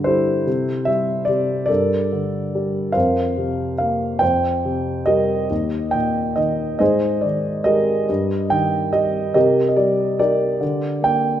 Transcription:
grand piano
Already playing: G2 D3 F4 A4 D5
0.04 G3 E4 A4 C5
0.47 C3
0.85 G3 E5
1.25 D5
1.29 C3
1.66 A4 A#4 D5
1.70 G2
2.13 D3
2.55 G3
2.92 F2 A#4 C5 F5
3.38 C3
3.78 A#3 F5
4.19 F2 C5 G5
4.65 C3
5.06 G3 G4 A#4 D#5
5.50 D#2
5.91 A#2 G5
6.36 D#3 D#5
6.79 G#2 G#4 C5 D#5
7.21 D#3 D5
7.64 G#3 G4 A#4 D#5
8.09 G2
8.50 D#3 G5
8.93 G3 D#5
9.34 C3 G4 A#4 D#5
9.68 D#5
9.76 G3 D5
10.19 D#4 G4 A#4 D5
10.61 D3
11.02 A#3 G5

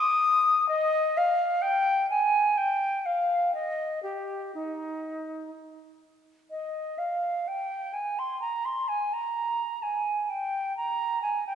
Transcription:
flute
0.00 D#6
0.68 D#5
1.17 F5
1.62 G5
2.10 G#5
2.57 G5
3.05 F5
3.54 D#5
4.02 G4
4.54 D#4
6.50 D#5
6.98 F5
7.47 G5
7.93 G#5
8.18 C6
8.41 A#5
8.65 C6
8.88 G#5
9.13 A#5
9.82 G#5
10.29 G5
10.77 A#5
11.22 G#5
11.46 G5

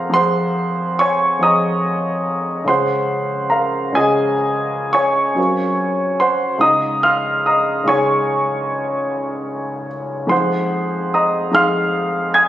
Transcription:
grand piano
Already playing: F2 F3 C4 F4 G#4 A#4 C5 F5 F#5 A#5 C6
0.09 F2 F3 C4 F4 G#4
0.14 C5 F#5 C6
0.99 C#5 G#5 C#6
1.39 F2 F3 C4 F4 G#4 D#6
1.43 D#5 A#5
2.64 C#2 G#3 C#4 F4 G#4 C6
2.69 C5 F#5
3.50 A#4 F5 A#5
3.92 C#2 G#3 C#4 F4 G#5
3.96 G#4 D#5
4.93 C#5 G#5 C#6
5.35 F#2 F#3 C4 F4 A#4
6.20 C5 F#5 C6
6.58 C#2 G#3 D#4 F4 G#4 D#6
6.62 D#5 A#5
7.03 F5 C6 F6
7.46 D#5 A#5 D#6
7.84 C#2 G#3 D#4 F4 C#6
7.88 G#4 C#5 G#5
10.27 F2 G#3 D#4 F4 G#4 C6
10.31 C5 F#5
11.14 D#5 A#5 D#6
11.51 F2 G#3 D#4 F4 G#4 F6
11.55 F5 C6
12.34 G#5 D#6 G#6

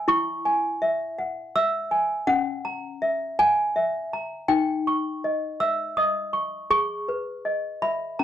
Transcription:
toy piano
0.08 E4 C#6
0.45 G#5
0.82 E5
1.19 F#5
1.56 E5 E6
1.91 G#5
2.27 C#4 F#5
2.65 A#5
3.02 E5
3.39 F#5 G#5
3.76 E5
4.13 A#5
4.48 D#4 G5
4.87 C#6
5.24 D#5
5.60 E5 E6
5.97 D#5 D#6
6.33 C#6
6.70 G#4 C#6
7.08 B4
7.45 D#5
7.82 E5 B5
8.19 C#4 A#5

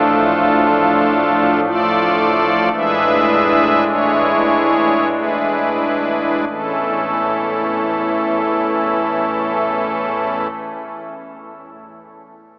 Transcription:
pipe organ
Already playing: A1 A2 F3 A3 D4 F4 A4
1.64 F4 A4 D5
2.73 A1 A2 E3 G#3 D4 G#4 B4 E5
3.87 E4 G#4 C#5
5.11 E4 G#4 B4
6.49 A1 E2 E3 A3 C#4 E4 A4

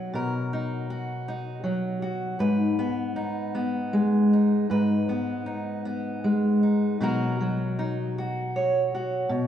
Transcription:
steel-string acoustic guitar
Already playing: B2 F#3 D#4 F#4 A#4
0.13 B2 A#4
0.53 D#4
0.90 F#4
1.28 D#4
1.64 F#3
2.02 F#4
2.39 G#2 B4
2.79 B3
3.16 D#4
3.55 B3
3.93 G#3
4.33 D#4
4.70 G#2 B4
5.09 B3
5.46 D#4
5.85 B3
6.24 G#3
6.63 D#4
7.00 B2 F#3 D#4 F#4 A#4
7.41 F#3
7.79 D#4
8.18 F#4
8.56 C#5
8.95 F#4
9.29 B2

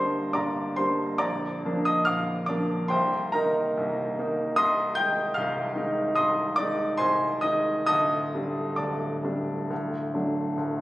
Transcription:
grand piano
Already playing: G1 G2 G3 A#3 D4 C5 D5 D#5 A#5 C6 D6 D#6
0.33 G1 G2 D5 A#5 D6
0.76 G3 A#3 D4 C5 C6
1.18 A#0 A#1 D5 A#5 D6
1.65 F3 A#3 D4
1.85 D#5 D#6
2.05 A#0 A#1 F5 D6 F6
2.46 F3 A#3 D4 D5 D6
2.88 C1 C2 C5 G5 C6
3.32 D#3 A#3 D#4 A#4 A#5
3.77 C1 C2
4.19 D#3 A#3 D#4
4.56 C1 C2 D#5 C6 D#6
4.95 D#3 G#3 D#4 G5 G6
5.34 C1 C2 F5 F6
5.75 D#3 G#3 D#4
6.15 C1 C2 D#5 C6 D#6
6.56 D#3 G#3 D#4 D5 D6
6.97 C1 C2 C5 G#5 C6
7.41 D#3 G#3 D#4 D#5 D#6
7.87 D1 D2 D#5 A5 D#6
8.34 G3 A3 D4
8.76 D1 D2 D5 A5 D6
9.23 G3 A3 D4
9.70 D1 D2
10.14 F#3 A3 D4
10.57 D1 D2

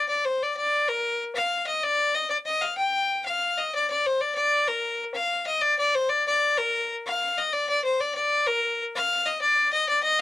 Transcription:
fiddle
0.08 D5
0.25 C5
0.42 D5
0.57 D5
0.88 A#4
1.35 F5
1.67 D#5
1.83 D5
2.15 D#5
2.30 D5
2.45 D#5
2.62 F5
2.77 G5
3.25 F5
3.58 D#5
3.75 D5
3.90 D5
4.06 C5
4.21 D5
4.35 D5
4.68 A#4
5.14 F5
5.46 D#5
5.61 D5
5.79 D5
5.95 C5
6.09 D5
6.27 D5
6.58 A#4
7.06 F5
7.38 D#5
7.53 D5
7.69 D5
7.84 C5
8.00 D5
8.15 D5
8.47 A#4
8.95 F5
9.26 D#5
9.41 D5
9.73 D#5
9.89 D5
10.03 D#5

